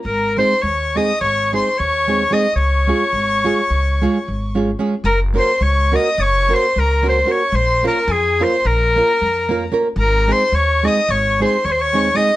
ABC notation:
X:1
M:9/8
L:1/16
Q:3/8=73
K:Gblyd
V:1 name="Violin"
b2 c'2 d'2 e'2 d'2 c'2 d'4 e'2 | d'12- d'2 z4 | b2 c'2 d'2 e'2 d'2 c'2 b2 c'2 d'2 | c'2 b2 a2 c'2 b8 z2 |
b2 c'2 d'2 e'2 d'2 c'2 d'/2 c'/2 d'3 e'2 |]
V:2 name="Clarinet"
B2 c2 d2 e2 d2 c2 d4 e2 | d12- d2 z4 | B2 c2 d2 e2 d2 c2 B2 c2 d2 | c2 B2 A2 c2 B8 z2 |
B2 c2 d2 e2 d2 c2 d/2 c/2 d3 e2 |]
V:3 name="Nylon-string guitar"
z2 [A,CEA]2 z2 [A,CEA]2 z2 [A,CEA]2 z2 [A,CEA]2 [A,CEA]2 | z2 [A,DFA]2 z2 [A,DFA]2 z2 [A,DFA]2 z2 [A,DFA]2 [A,DFA]2 | z2 [B,DGB]2 z2 [B,DGB]2 z2 [B,DGB]2 z2 [B,DGB]2 [B,DGB]2 | z2 [B,DFB]2 z2 [B,DFB]2 z2 [B,DFB]2 z2 [B,DFB]2 [B,DFB]2 |
z2 [A,CEA]2 z2 [A,CEA]2 z2 [A,CEA]2 z2 [A,CEA]2 [A,CEA]2 |]
V:4 name="Upright bass" clef=bass
A,,,4 E,,4 A,,,4 E,,6 | D,,4 A,,,4 D,,4 A,,,6 | G,,,4 D,,4 G,,,4 D,,6 | B,,,4 F,,4 B,,,4 F,,6 |
A,,,4 E,,4 A,,,4 E,,6 |]